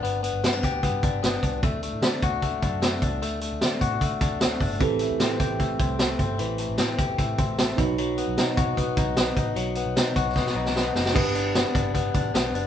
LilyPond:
<<
  \new Staff \with { instrumentName = "Reed electric piano" } { \time 4/4 \key g \major \tempo 4 = 151 r1 | r1 | r1 | <c' g' a'>1~ |
<c' g' a'>2.~ <c' g' a'>8 <dis' fis' b'>8~ | <dis' fis' b'>1~ | <dis' fis' b'>2.~ <dis' fis' b'>8 r8 | <d' g' b'>1 | }
  \new Staff \with { instrumentName = "Clean electric guitar" } { \time 4/4 \key g \major <b d' g'>8 b8 c'16 d'16 g'8 b8 d'8 b8 d'8 | a8 a8 d'8 fis'8 a8 d'8 a8 d'8 | a8 a8 d'8 fis'8 a8 d'8 a8 d'8 | e8 a8 c'8 g'8 a8 c'8 a8 c'8 |
e8 a8 c'8 g'8 a8 c'8 a8 fis8 | fis8 b8 dis'8 fis'8 b8 dis'8 b8 dis'8 | fis8 b8 dis'8 fis'8 b8 dis'8 b8 dis'8 | b8 d'8 b8 d'8 b8 d'8 b8 d'8 | }
  \new Staff \with { instrumentName = "Picked electric bass" } { \clef bass \time 4/4 \key g \major g,,8. g,,16 g,8 d,8 g,8 g,,4 c,8 | d,8. a,16 d8 d,4 fis,4 c,8 | d,8. d,16 d8 a,8 d8 d,4 g,,8 | a,,8. e,16 a,8 a,,4 c,4 g,,8 |
a,,8. a,,16 a,8 e,8 a,8 a,,4 b,,8~ | b,,8. b,,16 b,8 b,4 b,,4 a,,8 | b,,8. b,,16 b,8 b,,8 b,8 b,,4 fis,,8 | g,,4~ g,,16 r16 g,,4 a,,8 b,,8 fis,,8 | }
  \new DrumStaff \with { instrumentName = "Drums" } \drummode { \time 4/4 hh8 hh8 <hh sn>8 <hh bd>8 <hh bd>8 <hh bd>8 <hh sn>8 <hh bd>8 | <hh bd>8 hh8 <hh sn>8 <hh bd>8 <hh bd>8 <hh bd>8 <hh sn>8 <hh bd>8 | hh8 hh8 <hh sn>8 <hh bd>8 <hh bd>8 <hh bd>8 <hh sn>8 <hho bd>8 | <hh bd>8 hh8 <hh sn>8 <hh bd>8 <hh bd>8 <hh bd>8 <hh sn>8 <hh bd>8 |
hh8 hh8 <hh sn>8 <hh bd>8 <hh bd>8 <hh bd>8 <hh sn>8 <hh bd>8 | hh8 hh8 <hh sn>8 <hh bd>8 <hh bd>8 <hh bd>8 <hh sn>8 <hh bd>8 | hh8 hh8 <hh sn>8 <hh bd>8 <bd sn>16 sn8 sn16 sn8 sn16 sn16 | <cymc bd>8 hh8 <hh sn>8 <hh bd>8 <hh bd>8 <hh bd>8 <hh sn>8 hh8 | }
>>